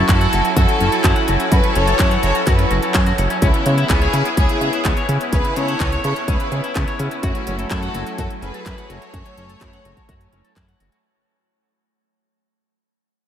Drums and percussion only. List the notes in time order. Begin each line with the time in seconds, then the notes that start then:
0.09 kick, clap, closed hi-hat
0.21 closed hi-hat
0.33 closed hi-hat
0.45 closed hi-hat
0.56 kick, closed hi-hat
0.69 closed hi-hat
0.80 closed hi-hat
0.92 closed hi-hat
1.04 kick, clap, closed hi-hat
1.16 closed hi-hat
1.28 closed hi-hat
1.40 closed hi-hat
1.52 kick, closed hi-hat
1.64 closed hi-hat
1.75 closed hi-hat
1.87 closed hi-hat
1.99 kick, clap, closed hi-hat
2.11 closed hi-hat
2.23 closed hi-hat
2.35 closed hi-hat
2.47 kick, clap, closed hi-hat
2.59 closed hi-hat
2.71 closed hi-hat
2.82 closed hi-hat
2.94 kick, clap, closed hi-hat
3.06 closed hi-hat
3.18 closed hi-hat
3.30 closed hi-hat
3.42 kick, closed hi-hat
3.54 closed hi-hat
3.66 closed hi-hat
3.78 closed hi-hat
3.90 kick, clap, closed hi-hat
4.01 closed hi-hat
4.13 closed hi-hat
4.25 closed hi-hat
4.37 kick, closed hi-hat
4.49 closed hi-hat
4.61 closed hi-hat
4.73 closed hi-hat
4.85 kick, clap, closed hi-hat
4.97 closed hi-hat
5.09 closed hi-hat
5.21 closed hi-hat
5.33 kick, closed hi-hat
5.45 closed hi-hat
5.56 closed hi-hat
5.68 closed hi-hat
5.80 kick, clap, closed hi-hat
5.92 closed hi-hat
6.04 closed hi-hat
6.16 closed hi-hat
6.28 kick, closed hi-hat
6.40 closed hi-hat
6.52 closed hi-hat
6.64 closed hi-hat
6.76 kick, clap, closed hi-hat
6.87 closed hi-hat
6.99 closed hi-hat
7.11 closed hi-hat
7.23 kick, closed hi-hat
7.35 closed hi-hat
7.47 closed hi-hat
7.59 closed hi-hat
7.71 kick, clap, closed hi-hat
7.83 closed hi-hat
7.94 closed hi-hat
8.06 closed hi-hat
8.18 kick, closed hi-hat
8.30 closed hi-hat
8.42 closed hi-hat
8.54 closed hi-hat
8.66 kick, clap, closed hi-hat
8.78 closed hi-hat
8.90 closed hi-hat
9.02 closed hi-hat
9.14 kick, closed hi-hat
9.26 closed hi-hat
9.38 closed hi-hat
9.49 closed hi-hat
9.61 kick, clap, closed hi-hat
9.73 closed hi-hat
9.85 closed hi-hat
9.97 kick, closed hi-hat
10.09 kick, closed hi-hat
10.21 closed hi-hat
10.33 closed hi-hat
10.45 closed hi-hat
10.56 kick, clap, closed hi-hat
10.68 closed hi-hat
10.80 closed hi-hat
10.92 closed hi-hat